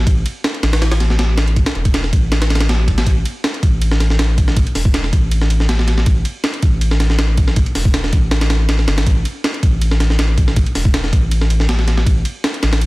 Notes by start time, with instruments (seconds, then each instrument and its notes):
0.07 sub bass A1, kick, ride
0.26 ride
0.44 snare, ride
0.54 ride
0.63 sub bass A1, snare, ride
0.73 snare, ride
0.82 snare, ride
0.92 snare, ride
1.00 snare, ride
1.10 snare
1.19 snare, ride
1.38 snare, ride
1.48 ride
1.56 kick, ride
1.66 snare, ride
1.75 sub bass E1, ride
1.85 kick, ride
1.94 snare, ride
2.04 snare
2.13 sub bass A1, kick, ride
2.32 snare, ride
2.42 snare, ride
2.50 snare, ride
2.55 snare, ride
2.60 snare, ride
2.69 snare, ride
2.88 sub bass C2, kick, ride
2.97 sub bass A1, snare, ride
3.07 sub bass A1, kick, ride
3.26 ride
3.44 snare, ride
3.54 ride
3.63 sub bass A1, kick, ride
3.81 ride
3.91 snare
4.00 snare, ride
4.10 snare
4.19 snare, ride
4.38 kick, ride
4.48 snare
4.57 kick, ride
4.67 ride
4.75 sub bass E1, snare, open hi-hat
4.85 kick
4.94 snare, ride
5.04 snare
5.13 sub bass A1, kick, ride
5.31 ride
5.41 snare
5.50 ride
5.60 snare
5.69 snare, ride
5.79 snare
5.88 snare, ride
5.97 snare
6.06 sub bass A1, kick, ride
6.25 ride
6.44 snare, ride
6.54 ride
6.63 sub bass A1, kick, ride
6.81 ride
6.91 snare
7.00 snare, ride
7.10 snare
7.19 snare, ride
7.37 kick, ride
7.48 snare
7.56 kick, ride
7.66 ride
7.75 sub bass E1, snare, open hi-hat
7.85 kick
7.94 snare, ride
8.04 snare
8.13 sub bass A1, kick, ride
8.31 snare, ride
8.41 snare, ride
8.50 snare, ride
8.69 snare, ride
8.79 snare
8.87 sub bass G1, snare, ride
8.97 sub bass A1, snare, ride
9.06 sub bass A1, kick, ride
9.25 ride
9.44 snare, ride
9.54 ride
9.63 sub bass A1, kick, ride
9.81 ride
9.91 snare
10.00 snare, ride
10.10 snare
10.19 snare, ride
10.38 kick, ride
10.48 snare
10.56 kick, ride
10.66 ride
10.75 sub bass E1, snare, open hi-hat
10.85 kick
10.94 snare, ride
11.04 snare
11.13 sub bass A1, kick, ride
11.31 ride
11.41 snare
11.50 ride
11.60 snare
11.69 snare, ride
11.79 snare
11.88 snare, ride
11.98 snare
12.06 sub bass A1, kick, ride
12.25 ride
12.44 snare, ride
12.54 ride
12.63 sub bass A1, snare, ride
12.73 snare, ride
12.81 ride